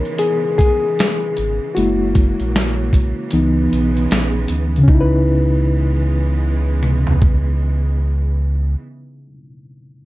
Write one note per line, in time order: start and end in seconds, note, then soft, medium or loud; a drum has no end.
0.00 3.29 C#3 medium
0.00 0.17 E3 medium
0.00 4.85 E3 medium
0.00 1.74 G#3 medium
0.00 0.17 B3 medium
0.00 1.74 B3 medium
0.00 0.18 D#4 medium
0.00 0.22 A#4 loud
0.00 1.78 C#5 loud
0.05 closed hi-hat soft
0.18 0.37 G#4 medium
0.18 closed hi-hat medium
0.58 1.79 G#4 medium
0.58 kick medium
0.58 closed hi-hat medium
0.99 snare loud
0.99 closed hi-hat medium
1.37 1.60 G#1 medium
1.37 closed hi-hat medium
1.75 2.36 F#1 loud
1.75 3.31 F#3 medium
1.75 2.32 G#3 medium
1.75 3.31 A#3 medium
1.75 2.32 A#3 soft
1.75 2.32 E4 medium
1.75 4.44 F#4 medium
1.75 closed hi-hat medium
2.15 kick medium
2.15 closed hi-hat medium
2.40 3.14 A#1 medium
2.40 closed hi-hat soft
2.56 snare loud
2.56 closed hi-hat medium
2.93 kick medium
2.93 closed hi-hat medium
3.31 3.69 C#2 medium
3.31 4.86 C#3 medium
3.31 4.84 E3 medium
3.31 4.86 G#3 medium
3.31 4.86 B3 medium
3.31 4.85 B3 soft
3.31 4.85 D#4 medium
3.31 closed hi-hat medium
3.73 4.08 B1 medium
3.73 closed hi-hat medium
3.97 closed hi-hat soft
4.11 4.47 A#1 medium
4.11 snare loud
4.11 closed hi-hat medium
4.48 4.85 D2 medium
4.48 closed hi-hat medium
4.76 9.26 C#3 medium
4.76 closed hi-hat soft
4.83 9.32 C#4 medium
4.87 8.76 C#2 loud
4.87 8.76 C#3 medium
4.87 8.76 E3 medium
4.87 8.76 G#3 medium
4.87 8.75 B3 medium
4.87 9.38 D#4 medium
4.87 kick loud
4.94 9.43 E4 medium
5.01 9.49 B4 medium
6.83 mid tom medium
7.07 floor tom medium
7.22 kick medium